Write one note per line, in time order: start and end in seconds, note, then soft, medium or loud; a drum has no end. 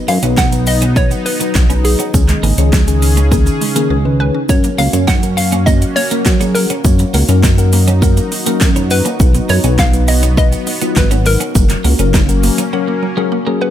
0.00 2.10 F#3 medium
0.00 2.12 B3 medium
0.00 4.45 D#4 loud
0.08 0.18 F#2 loud
0.08 0.19 F#3 medium
0.08 0.19 B3 medium
0.08 0.39 F5 loud
0.08 open hi-hat medium
0.08 shaker soft
0.23 1.14 B1 loud
0.23 0.43 F#3 medium
0.23 0.34 C#4 medium
0.23 0.43 D#4 medium
0.23 0.43 B4 medium
0.23 0.34 F#5 medium
0.23 closed hi-hat medium
0.23 shaker medium
0.23 shaker soft
0.37 0.48 B3 medium
0.37 0.49 D#4 medium
0.37 0.68 F#5 loud
0.37 kick loud
0.37 snare medium
0.37 clap loud
0.37 shaker medium
0.52 0.82 F#3 medium
0.52 0.63 F#3 medium
0.52 0.82 D#4 medium
0.52 0.83 B4 medium
0.52 closed hi-hat medium
0.52 shaker soft
0.52 shaker medium
0.67 0.97 D#5 loud
0.67 0.78 F#5 medium
0.67 muted clean electric guitar stroke soft
0.67 open hi-hat medium
0.67 shaker medium
0.82 0.93 B3 medium
0.82 0.93 C#4 medium
0.82 closed hi-hat medium
0.82 shaker medium
0.96 1.26 F#3 medium
0.96 1.07 F#3 medium
0.96 1.07 B3 medium
0.96 1.27 D#4 medium
0.96 1.27 B4 medium
0.96 1.27 C#5 loud
0.96 kick loud
0.96 shaker medium
1.11 1.22 F#5 medium
1.11 muted clean electric guitar stroke soft
1.11 closed hi-hat soft
1.11 shaker soft
1.26 1.37 B3 medium
1.26 1.86 B4 loud
1.26 open hi-hat medium
1.26 shaker medium
1.40 1.61 F#3 medium
1.40 1.52 F#3 medium
1.40 1.51 B3 medium
1.40 1.61 D#4 medium
1.40 1.61 B4 medium
1.40 closed hi-hat medium
1.40 shaker soft
1.40 shaker medium
1.55 1.96 B1 medium
1.55 1.66 F#5 medium
1.55 kick loud
1.55 snare medium
1.55 clap loud
1.55 shaker medium
1.70 2.00 F#3 medium
1.70 1.81 B3 medium
1.70 1.81 C#4 medium
1.70 2.00 D#4 medium
1.70 2.00 B4 medium
1.70 closed hi-hat medium
1.70 shaker soft
1.70 shaker medium
1.84 1.96 F#3 medium
1.84 3.57 G#4 medium
1.84 muted clean electric guitar stroke soft
1.84 open hi-hat medium
1.84 shaker medium
1.99 2.10 C#4 medium
1.99 2.10 F#5 medium
1.99 closed hi-hat medium
1.99 shaker soft
1.99 shaker medium
2.14 2.34 C#2 loud
2.14 4.47 C#3 medium
2.14 2.44 D#3 medium
2.14 4.47 C#4 medium
2.14 2.44 C#4 medium
2.14 2.25 C#4 medium
2.14 4.47 G#4 loud
2.14 2.44 G#4 medium
2.14 kick loud
2.14 shaker medium
2.28 2.40 G#3 medium
2.28 muted clean electric guitar stroke soft
2.28 clap medium
2.28 closed hi-hat medium
2.28 shaker soft
2.28 shaker medium
2.43 2.54 G#1 loud
2.43 2.54 A#3 medium
2.43 2.54 G#5 medium
2.43 open hi-hat medium
2.43 shaker soft
2.58 3.50 C#2 loud
2.58 2.78 D#3 medium
2.58 2.78 C#4 medium
2.58 2.69 C#4 medium
2.58 2.78 G#4 medium
2.58 closed hi-hat medium
2.58 shaker medium
2.73 2.84 G#3 medium
2.73 2.84 D#4 medium
2.73 kick loud
2.73 snare medium
2.73 clap loud
2.73 shaker medium
2.87 3.18 D#3 medium
2.87 3.18 C#4 medium
2.87 3.18 G#4 loud
2.87 2.98 G#5 medium
2.87 closed hi-hat medium
2.87 shaker medium
2.87 shaker soft
3.02 3.13 C#4 medium
3.02 muted clean electric guitar stroke soft
3.02 open hi-hat medium
3.02 shaker medium
3.17 3.28 G#3 medium
3.17 3.28 C#4 medium
3.17 closed hi-hat medium
3.17 shaker medium
3.17 shaker soft
3.32 3.62 D#3 medium
3.32 3.43 A#3 medium
3.32 3.62 C#4 medium
3.32 3.62 G#4 loud
3.32 3.43 G#5 loud
3.32 kick loud
3.32 shaker medium
3.46 3.57 C#4 medium
3.46 muted clean electric guitar stroke soft
3.46 closed hi-hat soft
3.46 shaker medium
3.46 shaker soft
3.61 3.72 G#3 medium
3.61 open hi-hat medium
3.61 shaker medium
3.76 3.96 D#3 medium
3.76 3.87 A#3 medium
3.76 3.96 C#4 medium
3.76 3.96 G#4 loud
3.76 3.87 G#5 medium
3.76 closed hi-hat medium
3.76 shaker soft
3.76 shaker medium
3.90 4.31 C#2 medium
3.90 4.01 C#4 medium
4.05 4.35 D#3 medium
4.05 4.16 G#3 medium
4.05 4.35 C#4 medium
4.05 4.35 B4 medium
4.20 4.50 B4 medium
4.20 4.31 G#5 loud
4.34 4.45 C#4 medium
4.49 4.70 F#2 loud
4.49 4.79 F#3 medium
4.49 9.16 A#3 medium
4.49 4.80 C#4 medium
4.49 6.83 C#4 medium
4.49 13.70 F#4 medium
4.49 4.80 A#4 medium
4.49 4.80 C#5 loud
4.49 4.60 F#5 loud
4.49 kick loud
4.49 shaker medium
4.64 4.75 A#3 medium
4.64 muted clean electric guitar stroke soft
4.64 closed hi-hat medium
4.64 shaker medium
4.64 shaker soft
4.78 4.89 C#2 medium
4.78 4.90 F#3 medium
4.78 4.90 A#3 medium
4.78 4.92 F5 loud
4.78 open hi-hat medium
4.78 shaker soft
4.93 5.85 F#2 loud
4.93 5.14 F#3 medium
4.93 5.04 C#4 medium
4.93 5.14 C#4 medium
4.93 5.14 C#5 medium
4.93 5.04 F#5 medium
4.93 closed hi-hat medium
4.93 shaker medium
4.93 shaker soft
5.08 5.19 A#3 medium
5.08 5.19 D#4 medium
5.08 5.38 F#5 loud
5.08 kick loud
5.08 snare medium
5.08 clap loud
5.08 shaker medium
5.23 5.34 F#3 medium
5.23 5.53 F#3 medium
5.23 5.53 C#4 medium
5.23 5.53 A#4 medium
5.23 closed hi-hat medium
5.23 shaker soft
5.23 shaker medium
5.37 5.68 F5 loud
5.37 5.48 F#5 medium
5.37 muted clean electric guitar stroke soft
5.37 open hi-hat medium
5.37 shaker medium
5.52 5.63 A#3 medium
5.52 5.63 C#4 medium
5.52 closed hi-hat medium
5.52 shaker medium
5.52 shaker soft
5.66 5.97 F#3 medium
5.66 5.78 F#3 loud
5.66 5.78 A#3 medium
5.66 5.97 C#4 medium
5.66 5.97 F#4 medium
5.66 5.80 D#5 loud
5.66 kick loud
5.66 shaker medium
5.82 5.93 F#5 medium
5.82 muted clean electric guitar stroke soft
5.82 closed hi-hat soft
5.82 shaker soft
5.96 6.07 A#3 medium
5.96 6.57 C#5 loud
5.96 open hi-hat medium
5.96 shaker medium
6.11 6.31 F#3 medium
6.11 6.22 F#3 medium
6.11 6.22 A#3 medium
6.11 6.31 C#4 medium
6.11 6.31 A#4 medium
6.11 closed hi-hat medium
6.11 shaker soft
6.11 shaker medium
6.26 6.67 F#3 medium
6.26 6.37 F#5 loud
6.26 kick loud
6.26 snare medium
6.26 clap loud
6.26 shaker medium
6.40 6.70 F#3 medium
6.40 6.51 A#3 medium
6.40 6.71 C#4 medium
6.40 6.51 C#4 medium
6.40 6.71 G#4 medium
6.40 closed hi-hat medium
6.40 shaker medium
6.55 6.66 F#3 medium
6.55 8.27 A#4 medium
6.55 muted clean electric guitar stroke soft
6.55 open hi-hat medium
6.55 shaker medium
6.70 6.81 C#4 medium
6.70 6.81 F#5 medium
6.70 closed hi-hat medium
6.70 shaker medium
6.70 shaker soft
6.84 7.05 F#2 loud
6.84 7.15 F#3 medium
6.84 6.96 A#3 medium
6.84 7.15 C#4 medium
6.84 11.51 D#4 medium
6.84 7.15 C#5 medium
6.84 kick loud
6.84 shaker medium
6.99 7.10 F#3 medium
6.99 muted clean electric guitar stroke soft
6.99 closed hi-hat medium
6.99 shaker medium
6.99 shaker soft
7.14 7.24 C#2 loud
7.14 7.25 A#3 medium
7.14 7.25 F#5 medium
7.14 open hi-hat medium
7.14 shaker soft
7.29 8.20 F#2 loud
7.29 7.49 F#3 medium
7.29 7.49 C#4 medium
7.29 7.40 C#4 medium
7.29 7.49 A#4 loud
7.29 closed hi-hat medium
7.29 shaker medium
7.29 shaker soft
7.43 7.54 F#3 medium
7.43 7.54 D#4 medium
7.43 kick loud
7.43 snare medium
7.43 clap loud
7.43 shaker medium
7.58 7.88 F#3 medium
7.58 7.88 C#4 medium
7.58 7.88 A#4 loud
7.58 7.69 F#5 medium
7.58 closed hi-hat medium
7.58 shaker medium
7.58 shaker soft
7.73 7.84 A#3 medium
7.73 muted clean electric guitar stroke soft
7.73 open hi-hat medium
7.73 shaker medium
7.88 7.99 F#3 medium
7.88 7.98 C#4 medium
7.88 closed hi-hat medium
7.88 shaker medium
8.02 8.32 F#3 medium
8.02 8.13 A#3 medium
8.02 8.32 C#4 medium
8.02 8.33 A#4 loud
8.02 8.13 F#5 loud
8.02 kick loud
8.02 shaker medium
8.17 8.28 A#3 medium
8.17 muted clean electric guitar stroke soft
8.17 closed hi-hat soft
8.17 shaker soft
8.32 8.43 F#3 medium
8.32 open hi-hat medium
8.32 shaker medium
8.46 8.66 F#3 medium
8.46 8.57 A#3 medium
8.46 8.66 C#4 medium
8.46 8.67 A#4 loud
8.46 8.57 F#5 medium
8.46 closed hi-hat medium
8.46 shaker medium
8.46 shaker soft
8.61 9.02 F#2 loud
8.61 8.72 A#3 medium
8.61 kick loud
8.61 snare medium
8.61 clap loud
8.61 shaker medium
8.75 9.06 F#3 medium
8.75 8.87 F#3 medium
8.75 9.06 C#4 medium
8.75 8.87 C#4 medium
8.75 9.06 D#4 medium
8.75 closed hi-hat soft
8.75 shaker medium
8.91 9.51 B4 loud
8.91 9.02 F#5 medium
8.91 muted clean electric guitar stroke soft
8.91 open hi-hat medium
8.91 shaker medium
9.05 9.16 A#3 medium
9.05 9.16 C#4 medium
9.05 closed hi-hat medium
9.05 shaker medium
9.05 shaker soft
9.20 9.40 B1 loud
9.20 9.50 F#3 medium
9.20 11.53 B3 medium
9.20 9.50 D#4 medium
9.20 9.50 B4 medium
9.20 9.31 F#5 loud
9.20 kick loud
9.20 shaker medium
9.35 9.46 B3 medium
9.35 muted clean electric guitar stroke soft
9.35 closed hi-hat medium
9.35 shaker medium
9.35 shaker soft
9.49 9.60 F#2 loud
9.49 9.60 F#3 medium
9.49 9.60 B3 medium
9.49 9.80 C#5 loud
9.49 open hi-hat medium
9.49 shaker soft
9.64 10.56 B1 loud
9.64 9.84 F#3 medium
9.64 9.75 C#4 medium
9.64 9.84 D#4 medium
9.64 9.84 B4 medium
9.64 9.75 F#5 medium
9.64 closed hi-hat medium
9.64 shaker medium
9.79 9.90 B3 medium
9.79 9.90 D#4 medium
9.79 10.09 F5 loud
9.79 kick loud
9.79 snare medium
9.79 clap loud
9.79 shaker medium
9.93 10.23 F#3 medium
9.93 10.04 F#3 medium
9.93 10.24 D#4 medium
9.93 10.24 B4 medium
9.93 closed hi-hat medium
9.93 shaker medium
9.93 shaker soft
10.08 10.37 D#5 loud
10.08 10.19 F#5 medium
10.08 muted clean electric guitar stroke soft
10.08 open hi-hat medium
10.08 shaker medium
10.23 10.34 B3 medium
10.23 10.34 C#4 medium
10.23 closed hi-hat medium
10.23 shaker medium
10.37 10.68 F#3 medium
10.37 10.49 F#3 medium
10.37 10.48 B3 medium
10.37 10.68 D#4 medium
10.37 10.68 B4 medium
10.37 10.98 D#5 loud
10.37 kick loud
10.37 shaker medium
10.52 10.63 F#5 medium
10.52 muted clean electric guitar stroke soft
10.52 closed hi-hat soft
10.52 shaker soft
10.67 10.78 B3 medium
10.67 open hi-hat medium
10.67 shaker medium
10.82 11.02 F#3 medium
10.82 10.93 F#3 medium
10.82 10.93 B3 medium
10.82 11.02 D#4 medium
10.82 11.02 F4 medium
10.82 closed hi-hat medium
10.82 shaker medium
10.82 shaker soft
10.96 11.37 G#1 medium
10.96 11.10 B4 medium
10.96 11.07 F#5 medium
10.96 kick loud
10.96 snare medium
10.96 clap loud
10.96 shaker medium
11.11 11.41 F#3 medium
11.11 11.22 B3 medium
11.11 11.22 C#4 medium
11.11 11.41 D#4 medium
11.11 11.41 B4 medium
11.11 closed hi-hat medium
11.11 shaker medium
11.25 11.37 F#3 medium
11.25 13.28 A#4 medium
11.25 muted clean electric guitar stroke soft
11.25 open hi-hat medium
11.25 shaker medium
11.40 11.51 C#4 medium
11.40 11.51 F#5 medium
11.40 closed hi-hat medium
11.40 shaker soft
11.40 shaker medium
11.55 11.76 F#1 loud
11.55 11.85 F#3 medium
11.55 11.66 A#3 medium
11.55 13.70 A#3 medium
11.55 13.70 C#4 medium
11.55 11.85 C#4 medium
11.55 11.86 A#4 medium
11.55 kick loud
11.55 shaker medium
11.70 11.81 F#3 medium
11.70 muted clean electric guitar stroke soft
11.70 clap medium
11.70 closed hi-hat medium
11.70 shaker medium
11.70 shaker soft
11.84 11.95 C#2 loud
11.84 11.95 A#3 medium
11.84 11.95 F#5 medium
11.84 open hi-hat medium
11.84 shaker soft
11.99 12.50 F#1 loud
11.99 12.19 F#3 medium
11.99 12.10 C#4 medium
11.99 12.20 C#4 medium
11.99 12.20 A#4 loud
11.99 closed hi-hat medium
11.99 shaker medium
12.14 12.25 F#3 medium
12.14 12.25 D#4 medium
12.14 kick loud
12.14 snare loud
12.14 clap loud
12.14 shaker medium
12.29 12.59 F#3 medium
12.29 12.59 C#4 medium
12.29 12.59 A#4 loud
12.29 12.40 F#5 medium
12.29 closed hi-hat medium
12.29 shaker medium
12.29 shaker soft
12.43 12.54 A#3 medium
12.43 muted clean electric guitar stroke soft
12.43 open hi-hat medium
12.43 shaker medium
12.58 12.69 F#3 medium
12.58 12.69 C#4 medium
12.58 closed hi-hat medium
12.58 shaker medium
12.58 shaker soft
12.73 13.03 F#3 medium
12.73 12.84 C#4 medium
12.73 13.03 C#4 medium
12.73 13.03 A#4 loud
12.73 12.84 F#5 loud
12.87 12.99 A#3 medium
12.87 muted clean electric guitar stroke soft
13.03 13.13 F#3 medium
13.17 13.37 F#3 medium
13.17 13.28 G#3 medium
13.17 13.37 C#4 medium
13.17 13.37 A#4 loud
13.17 13.28 F#5 medium
13.32 13.43 A#3 medium
13.47 13.70 F#3 medium
13.47 13.57 F#3 medium
13.47 13.57 A#3 medium
13.47 13.70 C#4 medium
13.47 13.70 G#4 loud
13.61 13.70 B4 medium
13.61 13.70 F#5 medium
13.61 muted clean electric guitar stroke soft